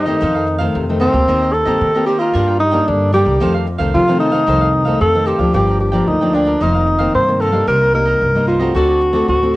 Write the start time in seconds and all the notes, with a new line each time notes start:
Already playing: G2 D#4
0.06 D#3 A3 C4 G4 C5 D#5
0.21 F2 D#4 A4 C5 F5
0.34 A4 C5 F5
0.47 muted cavaquinho stroke
0.58 D#3 A3 C4 A4 C5 F5
0.75 F2 C3
0.89 D#3 A3 C4
1.00 C4 D#4 A4 C5 F5
1.12 D2 A#3 C4 G4 A4 C5 F5
1.28 D#2 D#3 D#4 A#4 C5 D#5
1.42 A#4 C5 D#5
1.53 A4, muted cavaquinho stroke
1.65 G2 A#3 C4 G4 A#4 C5 D#5
1.81 D#3
1.94 A#3 C4 G4 A#4 C5 D#5
2.06 D#4 G4 A#4 C5 D#5
2.19 F4 A#4 C5 D#5
2.34 G2 G3 A#3 D4 A#4 D5 G5
2.48 A#4 D5 G5
2.60 D#4, muted cavaquinho stroke
2.72 G3 A#3 D4 A#4 D5 G5
2.88 G2 D3 D4
3.12 G3 A#3 D4 G4 A#4 D5 G5
3.25 C2 A#4 D5 G5
3.40 F2 D#3 A3 C4 D#4 A4 C5 F5
3.54 A4 C5 F5
3.67 muted cavaquinho stroke
3.78 C2 D#3 A3 C4 A4 C5 F5
3.94 C3 F3 F4
4.08 D#3 A3 C4 A4 C5 F5
4.19 D#4 A4 C5 F5
4.32 D#3 A3 C4 A4 C5 F5
4.47 C2 F2 D#3 A3 C4 D#4 A4 C5 F5
4.61 A4 C5 F5
4.73 muted cavaquinho stroke
4.85 D#3 A3 C4 A4 C5 F5
5.01 F2 C3 A4
5.15 D#3 A3 C4
5.26 D#4 G4 A4 C5 F5
5.38 D2 F3 A#3 D4 A4 C5 F5
5.53 G1 G2 F4 G4 A#4 D5 G5
5.67 A#4 D5 G5
5.80 G4, muted cavaquinho stroke
5.92 F3 A#3 D4 A#4 D5 G5
6.08 D2 D3 D#4
6.21 F3 A#3 D4 A#4 D5 G5
6.33 D4 F4 A#4 D5 G5
6.45 A#4 D5 G5
6.60 F1 F2 D#3 A#3 C4 D#4 A#4 C5 F5
6.74 A#4 C5 F5
6.87 muted cavaquinho stroke
6.99 D#3 A#3 C4 A#4 C5 F5
7.15 G2 C3 C5
7.28 D#3 A#3 C4
7.40 D#4 A4 A#4 C5 F5
7.52 G3 A#3 D#4 A#4 C5 F5
7.68 C2 C3 D#4 A#4 C5 D#5
7.81 A#4 C5 D#5
7.93 G3 A#3 D#4 A#4, muted cavaquinho stroke
8.06 A#4 C5 D#5
8.21 C2 G2
8.35 G3 A#3 D#4 A#4 C5 D#5
8.47 D#4 F4 A#4 C5 D#5
8.60 A3 C4 F#4 A#4 C5 D#5
8.75 D2 D3 F#4 A4 C5 D5
8.89 A4 C5 D5
9.01 muted cavaquinho stroke
9.13 A3 C4 F#4 A4 C5 D5
9.28 D2 A2 F#4
9.43 A3 C4 F#4